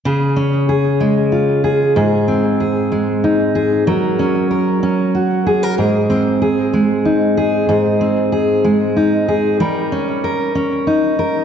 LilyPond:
\new Staff \with { instrumentName = "Steel-string acoustic guitar" } { \time 6/8 \key aes \mixolydian \tempo 4. = 63 <des aes'>8 des'8 aes'8 aes8 f'8 aes'8 | <aes, aes'>8 c'8 aes'8 aes8 ees'8 aes'8 | <ges bes'>8 des'8 bes'8 des'8 ges'8 aes'16 bes'16 | <aes, aes'>8 c'8 aes'8 aes8 ees'8 aes'8 |
<aes, aes'>8 c'8 aes'8 aes8 ees'8 aes'8 | <g bes'>8 des'8 bes'8 des'8 ees'8 bes'8 | }